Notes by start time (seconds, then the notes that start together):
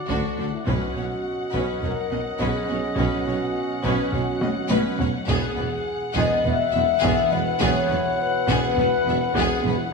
Already playing: A2 D4 D5 F#5
0.08 D2 D3 D4 F#4 A4, taiko
0.37 D2 D3 D4 A4
0.52 E4
0.66 B1 B2 C#4 F#4 B4 D#5 F#5, taiko
0.94 B1 C#4 C#5
0.98 B2
1.51 B1 B2 C#4 B4, taiko
1.81 B1 B2 C#4 A#4 C#5, taiko low
2.10 B1 B2 C#4 D#5
2.38 B1 B2 C#4 G#4 B4, taiko
2.68 B1 B2 C#4 C#5
2.97 B1 B2 C#4 F#4 B4, taiko
3.26 B1 B2 C#4 C#5
3.83 B1 B2 C#4 B4, taiko
4.11 B1 B2 C#4 F#4 C#5, taiko low
4.41 B1 B2 C#4 D#5, taiko high
4.69 B1 B2 C#4 B4, taiko high
4.99 B1 B2 C#4 C#5, taiko low
5.27 E1 E2 B2 B3 E4 G#4 F#5, taiko
5.56 E1 E2 B3 B4
6.13 E1 G#4 D#5, taiko
6.17 E2 B3
6.43 E1 E2 B3 B4, taiko low
6.47 E5
6.72 E1 E2 B3 E5
7.00 E1 E2 B3 G#4, taiko
7.31 E1 E2 B3 B4
7.59 E1 E2 B3 G#4, taiko
7.64 C#5
7.90 E1 E2 B3 B4
8.21 B4
8.48 E1 E2 B3 G#4, taiko
8.77 E1 E2 B3 B4, taiko low
9.06 E1 E2 B3 E5
9.35 E1 E2 B3 G#4, taiko
9.64 E1 E2 B3 B4
9.78 E4